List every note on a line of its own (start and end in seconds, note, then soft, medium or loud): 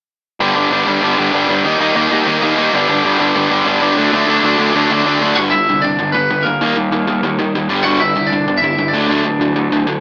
0.40 0.50 G1 loud
0.40 0.56 G2 loud
0.40 0.55 D3 loud
0.40 0.56 G3 medium
0.40 0.54 B3 loud
0.40 0.54 D4 loud
0.55 0.66 G1 medium
0.55 0.70 G2 medium
0.55 0.71 D3 medium
0.55 0.72 G3 medium
0.55 0.72 B3 medium
0.55 0.71 D4 medium
0.71 0.81 G1 medium
0.71 0.86 G2 medium
0.71 0.86 D3 medium
0.71 0.86 G3 loud
0.71 0.85 B3 medium
0.71 0.85 D4 medium
0.86 0.97 G1 loud
0.86 1.00 G2 medium
0.86 1.00 D3 medium
0.86 1.01 G3 medium
0.86 1.01 B3 medium
0.86 1.02 D4 medium
1.01 1.13 G1 medium
1.01 1.18 G2 medium
1.01 1.18 D3 medium
1.01 1.18 G3 medium
1.01 1.17 B3 loud
1.01 1.17 D4 loud
1.18 1.29 G1 medium
1.18 1.31 G2 medium
1.18 1.32 D3 medium
1.18 1.33 G3 medium
1.18 1.33 B3 medium
1.18 1.33 D4 medium
1.33 1.44 G1 medium
1.33 1.50 G2 medium
1.33 1.49 D3 loud
1.33 1.50 G3 loud
1.33 1.49 B3 medium
1.33 1.48 D4 loud
1.49 1.59 G1 medium
1.49 1.65 G2 medium
1.49 1.65 D3 medium
1.49 1.66 G3 medium
1.49 1.64 B3 medium
1.49 1.64 D4 medium
1.65 1.75 D#2 loud
1.65 1.81 D#3 loud
1.65 1.81 G3 loud
1.65 1.79 A#3 loud
1.65 1.79 D#4 loud
1.80 1.91 D#2 medium
1.80 1.94 D#3 medium
1.80 1.95 G3 medium
1.80 1.95 A#3 medium
1.80 1.96 D#4 medium
1.96 2.06 D#2 medium
1.96 2.12 D#3 medium
1.96 2.11 G3 medium
1.96 2.11 A#3 medium
1.96 2.11 D#4 medium
2.12 2.22 D#2 loud
2.12 2.26 D#3 medium
2.12 2.27 G3 medium
2.12 2.26 A#3 medium
2.12 2.27 D#4 medium
2.26 2.37 D#2 medium
2.26 2.43 D#3 medium
2.26 2.42 G3 medium
2.26 2.42 A#3 loud
2.26 2.42 D#4 loud
2.43 2.53 D#2 medium
2.43 2.57 D#3 medium
2.43 2.58 G3 medium
2.43 2.58 A#3 medium
2.43 2.58 D#4 medium
2.58 2.68 D#2 medium
2.58 2.73 D#3 medium
2.58 2.73 G3 loud
2.58 2.74 A#3 medium
2.58 2.74 D#4 loud
2.74 2.84 G1 medium
2.74 2.89 G2 medium
2.74 2.89 D3 medium
2.74 2.89 G3 medium
2.74 2.88 B3 medium
2.74 2.89 D4 medium
2.89 2.99 G1 loud
2.89 3.03 G2 medium
2.89 3.04 D3 medium
2.89 3.04 G3 medium
2.89 3.04 B3 medium
2.89 3.05 D4 loud
3.04 3.15 G1 medium
3.04 3.20 G2 medium
3.04 3.20 D3 medium
3.04 3.20 G3 medium
3.04 3.19 B3 medium
3.04 3.19 D4 medium
3.20 3.30 G1 medium
3.20 3.34 G2 medium
3.20 3.34 D3 medium
3.20 3.34 G3 loud
3.20 3.35 B3 medium
3.20 3.36 D4 medium
3.35 3.46 G1 loud
3.35 3.51 G2 medium
3.35 3.51 D3 medium
3.35 3.51 G3 medium
3.35 3.50 B3 medium
3.35 3.51 D4 medium
3.51 3.61 G1 medium
3.51 3.65 G2 medium
3.51 3.66 D3 loud
3.51 3.66 G3 loud
3.51 3.66 B3 medium
3.51 3.67 D4 loud
3.66 3.77 G1 medium
3.66 3.82 G2 medium
3.66 3.82 D3 medium
3.66 3.81 G3 medium
3.66 3.81 B3 medium
3.66 3.81 D4 medium
3.82 3.92 G1 medium
3.82 3.98 G2 medium
3.82 3.96 D3 medium
3.82 3.97 G3 medium
3.82 3.97 B3 loud
3.82 3.98 D4 loud
3.97 4.07 D2 medium
3.97 4.13 D3 medium
3.97 4.13 F#3 medium
3.97 4.13 A3 medium
3.97 4.12 D4 loud
4.13 4.23 D2 loud
4.13 4.28 D3 medium
4.13 4.28 F#3 loud
4.13 4.29 A3 loud
4.13 4.29 D4 loud
4.28 4.39 D2 medium
4.28 4.45 D3 medium
4.28 4.44 F#3 medium
4.28 4.44 A3 medium
4.28 4.43 D4 medium
4.44 4.54 D2 medium
4.44 4.59 D3 medium
4.44 4.59 F#3 loud
4.44 4.60 A3 loud
4.44 4.60 D4 loud
4.59 4.70 D2 loud
4.59 4.77 D3 medium
4.59 4.76 F#3 medium
4.59 4.76 A3 medium
4.59 4.75 D4 medium
4.75 4.85 D2 loud
4.75 4.91 D3 medium
4.75 4.91 F#3 loud
4.75 4.92 A3 loud
4.75 4.92 D4 loud
4.90 5.00 D2 medium
4.90 5.07 D3 medium
4.90 5.06 F#3 medium
4.90 5.06 A3 medium
4.90 5.05 D4 medium
5.05 5.16 D2 medium
5.05 5.22 D3 medium
5.05 5.23 F#3 medium
5.05 5.23 A3 loud
5.05 5.23 D4 loud
5.21 5.32 D2 medium
5.21 5.37 D3 medium
5.21 5.38 F#3 medium
5.21 5.38 A3 medium
5.21 5.38 D4 medium
5.36 5.67 G1 loud
5.36 5.52 G2 medium
5.36 5.53 D3 medium
5.36 5.53 G3 loud
5.36 5.41 F#4 loud
5.36 5.41 F#5 loud
5.51 5.67 G2 medium
5.51 5.68 D3 medium
5.51 5.82 E4 medium
5.51 5.83 E5 loud
5.69 5.98 C2 medium
5.69 5.83 G2 medium
5.69 5.83 D3 medium
5.82 5.97 G2 medium
5.82 5.98 D3 medium
5.82 6.13 D4 medium
5.82 6.12 D5 medium
5.99 6.15 G1 loud
5.99 6.13 G2 medium
5.99 6.14 D3 medium
6.12 6.30 G1 medium
6.12 6.29 G2 medium
6.12 6.29 D3 medium
6.12 6.44 B3 medium
6.12 6.46 B4 medium
6.30 6.46 G1 medium
6.30 6.45 G2 medium
6.30 6.45 D3 medium
6.43 6.61 G1 medium
6.43 6.60 G2 medium
6.43 6.61 D3 medium
6.43 7.34 A#3 medium
6.43 7.33 A#4 medium
6.61 6.75 D#2 loud
6.61 6.75 D#3 medium
6.61 6.75 G3 medium
6.61 6.76 A#3 medium
6.76 6.90 D#2 medium
6.76 6.91 D#3 medium
6.76 6.91 G3 medium
6.91 7.07 D#2 medium
6.91 7.06 D#3 medium
6.91 7.07 G3 medium
7.07 7.22 D#2 medium
7.07 7.22 D#3 medium
7.07 7.22 G3 medium
7.22 7.38 D#2 loud
7.22 7.37 D#3 medium
7.22 7.37 G3 medium
7.39 7.53 D#3 loud
7.39 7.53 D#3 medium
7.39 7.53 G3 medium
7.54 7.68 D#2 medium
7.54 7.69 D#3 medium
7.54 7.69 G3 medium
7.68 7.84 G1 medium
7.68 7.84 G2 medium
7.68 7.84 D3 medium
7.68 7.85 G3 medium
7.84 8.14 G1 loud
7.84 8.00 G2 medium
7.84 8.00 D3 loud
7.84 8.00 G3 loud
7.84 8.00 F#4 loud
7.84 7.99 F#5 loud
8.00 8.14 G2 medium
8.00 8.15 D3 medium
8.00 8.29 E4 medium
8.00 8.32 E5 loud
8.15 8.45 C2 loud
8.15 8.30 G2 medium
8.15 8.30 D3 medium
8.27 8.59 D4 medium
8.27 8.61 D5 medium
8.32 8.46 G2 medium
8.32 8.46 D3 medium
8.47 8.61 G1 loud
8.47 8.61 G2 medium
8.47 8.62 D3 medium
8.58 8.91 E4 medium
8.58 8.92 E5 loud
8.62 8.77 G1 medium
8.62 8.77 G2 medium
8.62 8.77 D3 medium
8.77 8.92 G1 medium
8.77 8.92 G2 medium
8.77 8.92 D3 medium
8.88 9.79 D5 medium
8.93 9.08 D2 medium
8.93 9.08 D3 medium
8.93 9.08 F#3 medium
8.93 9.08 A3 medium
8.93 9.81 D4 medium
9.08 9.23 D2 medium
9.08 9.24 D3 loud
9.08 9.24 F#3 loud
9.08 9.24 A3 loud
9.24 9.39 D2 medium
9.24 9.38 D3 medium
9.24 9.39 F#3 medium
9.40 9.53 D2 medium
9.40 9.54 D3 medium
9.40 9.54 F#3 medium
9.54 9.69 D2 medium
9.54 9.69 D3 medium
9.54 9.69 F#3 medium
9.70 9.85 D2 medium
9.70 9.85 D3 medium
9.70 9.85 F#3 medium
9.85 10.00 D3 medium
9.85 10.00 F#3 medium